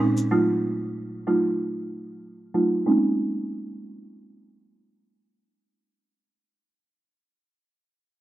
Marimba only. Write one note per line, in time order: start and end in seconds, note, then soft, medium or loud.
0.00 0.18 A#2 medium
0.00 0.18 G#3 medium
0.00 0.18 C4 medium
0.00 0.18 C#4 medium
0.00 0.18 D#4 medium
0.31 1.20 F#3 medium
0.31 1.20 A3 medium
0.31 1.20 D#4 medium
0.31 1.20 F4 medium
1.27 1.57 F#3 medium
1.27 1.57 A3 medium
1.27 1.57 D#4 medium
1.27 1.57 F4 medium
2.54 2.73 F#3 medium
2.54 2.73 A3 medium
2.54 2.73 D#4 medium
2.54 2.73 F4 medium
2.86 6.58 G#3 medium
2.86 6.58 A#3 medium
2.86 6.58 C4 medium
2.86 6.59 C#4 medium
2.86 6.59 D#4 medium